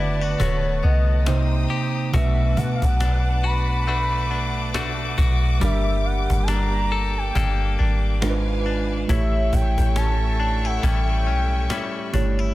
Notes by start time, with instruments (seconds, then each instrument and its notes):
Already playing: 808-style bass F#1, tine electric piano D3 A3 F#4 B4, clean electric guitar D3 B3 E4, string section B4 F#5 A5, soft synth lead D5
0.21 clean electric guitar F#4
0.40 808-style bass D1, clean electric guitar A3 B3 F#4, soft synth lead C#5, cajon bass
0.83 808-style bass C2, clean electric guitar B3, soft synth lead D#5, cajon slap
1.26 tine electric piano C3 A#3 D#4 C5, clean electric guitar C3, string section C5 G5 A#5 D#6, cajon slap
1.70 clean electric guitar G4, cajon slap
1.95 cajon slap
2.12 808-style bass B1, tine electric piano B2 A3 D4 B4, clean electric guitar B2 F#4, string section B4 F#5 A5 D6, soft synth lead E5, cajon bass
2.57 808-style bass B2, soft synth lead F#5, cajon bass
2.72 soft synth lead F5, cajon slap
2.82 808-style bass B1, soft synth lead F#5, cajon bass, cajon slap
3.00 clean electric guitar D4, cajon slap
3.44 clean electric guitar F#4, soft synth lead B5, cajon slap
3.87 clean electric guitar A3 D4 F#4, cajon slap
4.30 clean electric guitar D4, cajon slap
4.74 clean electric guitar A3 D4 F#4, cajon slap
5.18 808-style bass B1, clean electric guitar F#4, cajon bass
5.43 cajon slap
5.60 808-style bass G1, tine electric piano G3 D4 G4 A#4, clean electric guitar G3, string section A#3 G4, soft synth lead E5, cajon bass
6.05 soft synth lead F#5, cajon slap
6.19 cajon slap
6.30 808-style bass G1, cajon bass, cajon slap
6.43 soft synth lead A5
6.48 clean electric guitar D4, soft synth lead A#5, cajon slap
6.92 clean electric guitar A4, cajon slap
7.18 soft synth lead G5
7.35 808-style bass G1, clean electric guitar A#3 D4 A4, cajon bass
7.78 808-style bass G#1, clean electric guitar D4, cajon slap
8.21 clean electric guitar G#2, tine electric piano G#3 D4 F4 A#4, string section B4 F5 G#5, cajon slap
8.30 tine electric piano B4
8.66 clean electric guitar D4, cajon slap
8.91 cajon slap
9.07 808-style bass A1, clean electric guitar A2 E4, tine electric piano A3 E4 G4 C#5, string section A4 E5 G5 C#6, soft synth lead E5, cajon bass
9.53 808-style bass A1, soft synth lead G5, cajon bass
9.78 808-style bass A1, cajon bass
9.96 clean electric guitar C#4, soft synth lead A5, cajon slap
10.40 clean electric guitar D4, cajon slap
10.65 clean electric guitar E4, soft synth lead F#5
10.83 808-style bass A1, clean electric guitar G3 C#4 E4, soft synth lead G5, cajon bass
11.26 808-style bass B1, clean electric guitar C#4, cajon slap
11.70 clean electric guitar G3 C#4 E4, cajon slap
12.13 808-style bass G1, tine electric piano A3 E4 G4 C#5, clean electric guitar D4, cajon bass
12.39 clean electric guitar E4